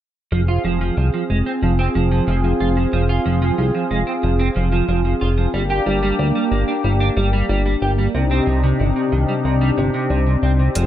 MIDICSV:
0, 0, Header, 1, 5, 480
1, 0, Start_track
1, 0, Tempo, 652174
1, 236, Time_signature, 4, 2, 24, 8
1, 7996, End_track
2, 0, Start_track
2, 0, Title_t, "Analog synth pad"
2, 0, Program_c, 0, 89
2, 235, Note_on_c, 0, 60, 82
2, 235, Note_on_c, 0, 65, 76
2, 235, Note_on_c, 0, 68, 94
2, 4046, Note_off_c, 0, 60, 0
2, 4046, Note_off_c, 0, 65, 0
2, 4046, Note_off_c, 0, 68, 0
2, 4075, Note_on_c, 0, 67, 93
2, 4076, Note_on_c, 0, 58, 84
2, 4076, Note_on_c, 0, 62, 76
2, 5976, Note_off_c, 0, 67, 0
2, 5977, Note_off_c, 0, 58, 0
2, 5977, Note_off_c, 0, 62, 0
2, 5994, Note_on_c, 0, 67, 94
2, 5995, Note_on_c, 0, 48, 84
2, 5995, Note_on_c, 0, 60, 74
2, 5995, Note_on_c, 0, 62, 78
2, 5995, Note_on_c, 0, 63, 77
2, 7896, Note_off_c, 0, 48, 0
2, 7896, Note_off_c, 0, 62, 0
2, 7896, Note_off_c, 0, 63, 0
2, 7896, Note_off_c, 0, 67, 0
2, 7915, Note_on_c, 0, 65, 78
2, 7915, Note_on_c, 0, 68, 91
2, 7996, Note_off_c, 0, 60, 0
2, 7996, Note_off_c, 0, 65, 0
2, 7996, Note_off_c, 0, 68, 0
2, 7996, End_track
3, 0, Start_track
3, 0, Title_t, "Clean electric guitar"
3, 0, Program_c, 1, 27
3, 235, Note_on_c, 1, 53, 96
3, 295, Note_off_c, 1, 53, 0
3, 355, Note_on_c, 1, 65, 92
3, 446, Note_off_c, 1, 65, 0
3, 476, Note_on_c, 1, 53, 95
3, 566, Note_off_c, 1, 53, 0
3, 597, Note_on_c, 1, 53, 95
3, 686, Note_off_c, 1, 53, 0
3, 717, Note_on_c, 1, 53, 79
3, 776, Note_off_c, 1, 53, 0
3, 837, Note_on_c, 1, 53, 71
3, 896, Note_off_c, 1, 53, 0
3, 957, Note_on_c, 1, 56, 72
3, 1016, Note_off_c, 1, 56, 0
3, 1077, Note_on_c, 1, 60, 74
3, 1112, Note_off_c, 1, 60, 0
3, 1197, Note_on_c, 1, 53, 78
3, 1256, Note_off_c, 1, 53, 0
3, 1317, Note_on_c, 1, 60, 95
3, 1376, Note_off_c, 1, 60, 0
3, 1437, Note_on_c, 1, 53, 95
3, 1526, Note_off_c, 1, 53, 0
3, 1557, Note_on_c, 1, 53, 97
3, 1646, Note_off_c, 1, 53, 0
3, 1677, Note_on_c, 1, 53, 98
3, 1767, Note_off_c, 1, 53, 0
3, 1797, Note_on_c, 1, 53, 71
3, 1856, Note_off_c, 1, 53, 0
3, 1917, Note_on_c, 1, 65, 69
3, 1976, Note_off_c, 1, 65, 0
3, 2037, Note_on_c, 1, 53, 70
3, 2096, Note_off_c, 1, 53, 0
3, 2157, Note_on_c, 1, 53, 94
3, 2216, Note_off_c, 1, 53, 0
3, 2276, Note_on_c, 1, 65, 98
3, 2366, Note_off_c, 1, 65, 0
3, 2396, Note_on_c, 1, 53, 94
3, 2486, Note_off_c, 1, 53, 0
3, 2517, Note_on_c, 1, 53, 100
3, 2606, Note_off_c, 1, 53, 0
3, 2637, Note_on_c, 1, 53, 75
3, 2696, Note_off_c, 1, 53, 0
3, 2756, Note_on_c, 1, 53, 73
3, 2816, Note_off_c, 1, 53, 0
3, 2876, Note_on_c, 1, 56, 73
3, 2936, Note_off_c, 1, 56, 0
3, 2995, Note_on_c, 1, 60, 73
3, 3031, Note_off_c, 1, 60, 0
3, 3115, Note_on_c, 1, 53, 76
3, 3175, Note_off_c, 1, 53, 0
3, 3234, Note_on_c, 1, 60, 94
3, 3295, Note_off_c, 1, 60, 0
3, 3354, Note_on_c, 1, 53, 99
3, 3445, Note_off_c, 1, 53, 0
3, 3476, Note_on_c, 1, 53, 94
3, 3566, Note_off_c, 1, 53, 0
3, 3596, Note_on_c, 1, 53, 92
3, 3686, Note_off_c, 1, 53, 0
3, 3716, Note_on_c, 1, 53, 72
3, 3776, Note_off_c, 1, 53, 0
3, 3836, Note_on_c, 1, 65, 72
3, 3896, Note_off_c, 1, 65, 0
3, 3957, Note_on_c, 1, 53, 72
3, 4016, Note_off_c, 1, 53, 0
3, 4076, Note_on_c, 1, 55, 96
3, 4136, Note_off_c, 1, 55, 0
3, 4196, Note_on_c, 1, 67, 94
3, 4286, Note_off_c, 1, 67, 0
3, 4316, Note_on_c, 1, 55, 92
3, 4406, Note_off_c, 1, 55, 0
3, 4436, Note_on_c, 1, 55, 100
3, 4526, Note_off_c, 1, 55, 0
3, 4556, Note_on_c, 1, 55, 79
3, 4616, Note_off_c, 1, 55, 0
3, 4676, Note_on_c, 1, 55, 72
3, 4736, Note_off_c, 1, 55, 0
3, 4796, Note_on_c, 1, 58, 73
3, 4856, Note_off_c, 1, 58, 0
3, 4915, Note_on_c, 1, 62, 74
3, 4952, Note_off_c, 1, 62, 0
3, 5035, Note_on_c, 1, 55, 75
3, 5095, Note_off_c, 1, 55, 0
3, 5155, Note_on_c, 1, 62, 97
3, 5215, Note_off_c, 1, 62, 0
3, 5275, Note_on_c, 1, 55, 95
3, 5365, Note_off_c, 1, 55, 0
3, 5395, Note_on_c, 1, 55, 99
3, 5485, Note_off_c, 1, 55, 0
3, 5515, Note_on_c, 1, 55, 95
3, 5605, Note_off_c, 1, 55, 0
3, 5636, Note_on_c, 1, 55, 75
3, 5696, Note_off_c, 1, 55, 0
3, 5755, Note_on_c, 1, 67, 72
3, 5816, Note_off_c, 1, 67, 0
3, 5876, Note_on_c, 1, 55, 68
3, 5936, Note_off_c, 1, 55, 0
3, 5995, Note_on_c, 1, 48, 92
3, 6055, Note_off_c, 1, 48, 0
3, 6116, Note_on_c, 1, 60, 93
3, 6206, Note_off_c, 1, 60, 0
3, 6234, Note_on_c, 1, 48, 94
3, 6325, Note_off_c, 1, 48, 0
3, 6355, Note_on_c, 1, 48, 98
3, 6445, Note_off_c, 1, 48, 0
3, 6474, Note_on_c, 1, 48, 75
3, 6535, Note_off_c, 1, 48, 0
3, 6594, Note_on_c, 1, 48, 74
3, 6655, Note_off_c, 1, 48, 0
3, 6714, Note_on_c, 1, 51, 70
3, 6775, Note_off_c, 1, 51, 0
3, 6834, Note_on_c, 1, 55, 75
3, 6871, Note_off_c, 1, 55, 0
3, 6955, Note_on_c, 1, 48, 79
3, 7015, Note_off_c, 1, 48, 0
3, 7075, Note_on_c, 1, 55, 95
3, 7135, Note_off_c, 1, 55, 0
3, 7195, Note_on_c, 1, 48, 93
3, 7285, Note_off_c, 1, 48, 0
3, 7316, Note_on_c, 1, 48, 99
3, 7406, Note_off_c, 1, 48, 0
3, 7436, Note_on_c, 1, 48, 93
3, 7526, Note_off_c, 1, 48, 0
3, 7556, Note_on_c, 1, 48, 72
3, 7616, Note_off_c, 1, 48, 0
3, 7676, Note_on_c, 1, 60, 73
3, 7736, Note_off_c, 1, 60, 0
3, 7796, Note_on_c, 1, 48, 68
3, 7856, Note_off_c, 1, 48, 0
3, 7916, Note_on_c, 1, 53, 91
3, 7976, Note_off_c, 1, 53, 0
3, 7996, End_track
4, 0, Start_track
4, 0, Title_t, "Analog synth bass"
4, 0, Program_c, 2, 38
4, 236, Note_on_c, 2, 29, 95
4, 431, Note_off_c, 2, 29, 0
4, 476, Note_on_c, 2, 29, 79
4, 671, Note_off_c, 2, 29, 0
4, 715, Note_on_c, 2, 36, 102
4, 813, Note_off_c, 2, 36, 0
4, 955, Note_on_c, 2, 29, 79
4, 1053, Note_off_c, 2, 29, 0
4, 1196, Note_on_c, 2, 29, 90
4, 1391, Note_off_c, 2, 29, 0
4, 1436, Note_on_c, 2, 29, 85
4, 1631, Note_off_c, 2, 29, 0
4, 1676, Note_on_c, 2, 29, 96
4, 1871, Note_off_c, 2, 29, 0
4, 1916, Note_on_c, 2, 29, 84
4, 2111, Note_off_c, 2, 29, 0
4, 2156, Note_on_c, 2, 29, 97
4, 2351, Note_off_c, 2, 29, 0
4, 2397, Note_on_c, 2, 29, 82
4, 2591, Note_off_c, 2, 29, 0
4, 2637, Note_on_c, 2, 36, 102
4, 2734, Note_off_c, 2, 36, 0
4, 2877, Note_on_c, 2, 29, 82
4, 2974, Note_off_c, 2, 29, 0
4, 3116, Note_on_c, 2, 29, 88
4, 3311, Note_off_c, 2, 29, 0
4, 3357, Note_on_c, 2, 29, 82
4, 3551, Note_off_c, 2, 29, 0
4, 3596, Note_on_c, 2, 29, 95
4, 3791, Note_off_c, 2, 29, 0
4, 3836, Note_on_c, 2, 29, 85
4, 4031, Note_off_c, 2, 29, 0
4, 4076, Note_on_c, 2, 31, 94
4, 4271, Note_off_c, 2, 31, 0
4, 4316, Note_on_c, 2, 31, 82
4, 4511, Note_off_c, 2, 31, 0
4, 4556, Note_on_c, 2, 38, 99
4, 4654, Note_off_c, 2, 38, 0
4, 4796, Note_on_c, 2, 31, 80
4, 4893, Note_off_c, 2, 31, 0
4, 5036, Note_on_c, 2, 31, 87
4, 5231, Note_off_c, 2, 31, 0
4, 5276, Note_on_c, 2, 31, 87
4, 5471, Note_off_c, 2, 31, 0
4, 5515, Note_on_c, 2, 31, 95
4, 5710, Note_off_c, 2, 31, 0
4, 5755, Note_on_c, 2, 31, 83
4, 5951, Note_off_c, 2, 31, 0
4, 5994, Note_on_c, 2, 36, 92
4, 6190, Note_off_c, 2, 36, 0
4, 6235, Note_on_c, 2, 36, 81
4, 6431, Note_off_c, 2, 36, 0
4, 6475, Note_on_c, 2, 31, 100
4, 6573, Note_off_c, 2, 31, 0
4, 6715, Note_on_c, 2, 36, 79
4, 6813, Note_off_c, 2, 36, 0
4, 6954, Note_on_c, 2, 36, 87
4, 7150, Note_off_c, 2, 36, 0
4, 7194, Note_on_c, 2, 31, 85
4, 7292, Note_off_c, 2, 31, 0
4, 7434, Note_on_c, 2, 36, 94
4, 7630, Note_off_c, 2, 36, 0
4, 7675, Note_on_c, 2, 36, 82
4, 7870, Note_off_c, 2, 36, 0
4, 7914, Note_on_c, 2, 29, 93
4, 7996, Note_off_c, 2, 29, 0
4, 7996, End_track
5, 0, Start_track
5, 0, Title_t, "Drums"
5, 7915, Note_on_c, 9, 42, 83
5, 7988, Note_off_c, 9, 42, 0
5, 7996, End_track
0, 0, End_of_file